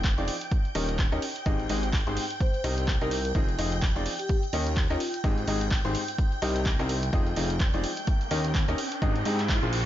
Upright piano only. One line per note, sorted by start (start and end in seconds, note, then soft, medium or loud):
0.18 0.32 F3 medium
0.18 0.32 C4 medium
0.18 0.32 D#4 medium
0.18 0.32 F4 medium
0.18 0.32 G#4 medium
0.18 0.32 D5 medium
0.75 1.01 D#3 medium
0.75 1.01 C#4 medium
0.75 1.01 D#4 medium
0.75 1.01 G4 medium
0.75 1.01 A#4 medium
0.75 1.01 D#5 loud
1.12 1.21 C#4 medium
1.12 1.21 D#4 medium
1.12 1.21 G4 medium
1.12 1.21 A#4 medium
1.12 1.21 D#5 loud
1.46 1.67 G#2 medium
1.46 1.67 C4 medium
1.46 1.67 D#4 medium
1.46 1.67 G4 medium
1.46 1.67 G#4 medium
1.46 1.67 D#5 medium
1.70 1.87 G#2 medium
1.70 1.87 C4 medium
1.70 1.87 D#4 medium
1.70 1.87 G4 medium
1.70 1.87 G#4 medium
1.70 1.87 D#5 medium
2.07 2.21 G#2 medium
2.07 2.21 C4 medium
2.07 2.21 D#4 medium
2.07 2.21 G4 medium
2.07 2.21 G#4 medium
2.07 2.21 C5 medium
2.64 2.90 C3 medium
2.64 2.90 C4 medium
2.64 2.90 D#4 medium
2.64 2.90 G4 medium
2.64 2.90 A#4 medium
2.64 2.90 D#5 loud
3.01 3.16 C3 loud
3.01 3.16 C4 medium
3.01 3.16 D#4 medium
3.01 3.16 G4 medium
3.01 3.16 A#4 medium
3.01 3.16 D#5 loud
3.35 3.56 F3 medium
3.35 3.56 C4 medium
3.35 3.56 D#4 medium
3.35 3.56 F4 medium
3.35 3.56 G#4 medium
3.35 3.56 D#5 medium
3.59 3.76 F3 medium
3.59 3.76 C4 medium
3.59 3.76 D#4 medium
3.59 3.76 F4 medium
3.59 3.76 G#4 medium
3.59 3.76 D#5 medium
3.96 4.10 F3 medium
3.96 4.10 C4 medium
3.96 4.10 D#4 medium
3.96 4.10 F4 medium
3.96 4.10 G#4 medium
3.96 4.10 D5 medium
4.53 4.79 D#3 medium
4.53 4.79 C#4 medium
4.53 4.79 D#4 medium
4.53 4.79 G4 medium
4.53 4.79 A#4 medium
4.53 4.79 D#5 loud
4.90 4.99 C#4 loud
4.90 4.99 D#4 medium
4.90 4.99 G4 medium
4.90 4.99 A#4 medium
4.90 4.99 D#5 loud
5.24 5.45 G#2 medium
5.24 5.45 C4 medium
5.24 5.45 D#4 medium
5.24 5.45 G4 medium
5.24 5.45 G#4 medium
5.24 5.45 D#5 medium
5.48 5.65 G#2 medium
5.48 5.65 C4 medium
5.48 5.65 D#4 medium
5.48 5.65 G4 medium
5.48 5.65 G#4 medium
5.48 5.65 D#5 medium
5.85 5.99 G#2 medium
5.85 5.99 C4 medium
5.85 5.99 D#4 medium
5.85 5.99 G4 medium
5.85 5.99 G#4 medium
5.85 5.99 C5 medium
6.42 6.68 C3 medium
6.42 6.68 C4 medium
6.42 6.68 D#4 medium
6.42 6.68 G4 medium
6.42 6.68 A#4 medium
6.42 6.68 D#5 loud
6.79 6.94 C3 medium
6.79 6.94 C4 medium
6.79 6.94 D#4 medium
6.79 6.94 G4 medium
6.79 6.94 A#4 medium
6.79 6.94 D#5 loud
7.13 7.34 F3 medium
7.13 7.34 C4 medium
7.13 7.34 D#4 medium
7.13 7.34 F4 medium
7.13 7.34 G#4 medium
7.13 7.34 D#5 medium
7.36 7.53 F3 medium
7.36 7.54 C4 medium
7.36 7.54 D#4 medium
7.36 7.53 F4 medium
7.36 7.54 G#4 medium
7.36 7.53 D#5 medium
7.74 7.88 F3 medium
7.74 7.88 C4 medium
7.74 7.88 D#4 medium
7.74 7.88 F4 medium
7.74 7.88 G#4 medium
7.74 7.88 D5 medium
8.31 8.56 D#3 medium
8.31 8.56 C#4 medium
8.31 8.56 D#4 medium
8.31 8.56 G4 medium
8.31 8.56 A#4 medium
8.31 8.56 D#5 loud
8.68 8.77 C#4 loud
8.68 8.77 D#4 medium
8.68 8.77 G4 medium
8.68 8.77 A#4 medium
8.68 8.77 D#5 loud
9.02 9.23 G#2 medium
9.02 9.23 C4 medium
9.02 9.23 D#4 medium
9.02 9.23 G4 medium
9.02 9.23 G#4 medium
9.02 9.23 D#5 medium
9.26 9.43 C4 medium
9.26 9.42 D#4 medium
9.26 9.43 G4 medium
9.26 9.43 G#4 medium
9.26 9.42 D#5 medium
9.63 9.77 A#2 medium
9.63 9.77 A#3 medium
9.63 9.77 D4 medium
9.63 9.77 F4 medium
9.63 9.77 G#4 medium
9.63 9.77 C5 medium